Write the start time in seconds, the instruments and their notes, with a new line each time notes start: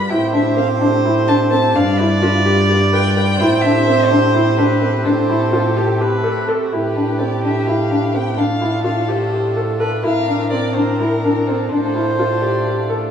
Already playing: violin B5
0.09 bass clarinet A2, pipe organ A3 C4 G4, felt piano E4, viola C5, violin G5
0.33 felt piano D4, violin E5
0.57 felt piano C4, violin F5
0.81 felt piano D4
1.05 felt piano E4
1.28 felt piano D4, violin A5
1.51 felt piano C4, violin A5
1.74 bass clarinet G2, pipe organ G3 F4 B4, felt piano D4, viola D5, violin F5
1.99 felt piano E4, violin D5
2.23 felt piano F4, violin E5
2.45 felt piano G4
2.69 felt piano G4
2.93 felt piano B4, violin G5
3.15 felt piano B4, violin G5
3.39 bass clarinet A2, pipe organ A3 C4 G4, felt piano E4, viola C5
3.62 felt piano D4, violin E5
3.88 felt piano C4
4.09 felt piano D4, violin C5
4.35 felt piano E4
4.57 felt piano D4, violin B4
4.82 felt piano C4
5.05 bass clarinet A2, felt piano D4, violin A4, viola C5
5.29 felt piano E4
5.53 felt piano F4
5.77 viola G4, felt piano G4
6.00 felt piano G4, viola B4
6.24 felt piano A4
6.48 viola A4, felt piano A4
6.65 viola F#4
6.71 bass clarinet A2, pipe organ A3 G4 B4, felt piano E4, viola G4, violin B4
6.96 felt piano D4
7.19 felt piano C4, violin D5
7.43 felt piano D4, violin E5
7.67 felt piano E4, violin F5
7.91 felt piano D4
8.14 felt piano C4, violin G5
8.37 bass clarinet A2, pipe organ A3 D4 F4, felt piano D4, viola A4, violin F5
8.61 felt piano E4
8.84 felt piano F4, violin F5
9.08 felt piano G4, violin C5
9.32 felt piano G4
9.56 felt piano A4
9.80 felt piano A4, viola B4
10.03 bass clarinet A2, pipe organ C4 D4 A#4, felt piano E4, viola A#4, violin F5
10.28 felt piano D4
10.50 felt piano C4, violin D5
10.74 felt piano D4, violin C5
10.98 felt piano E4, violin A#4
11.24 felt piano D4
11.47 felt piano C4, violin A4
11.69 bass clarinet A2, pipe organ A3 F4, felt piano D4, violin A4, viola C5
11.95 felt piano E4
12.17 felt piano F4, violin A4
12.42 felt piano G4, violin D5
12.66 felt piano G4
12.90 felt piano A4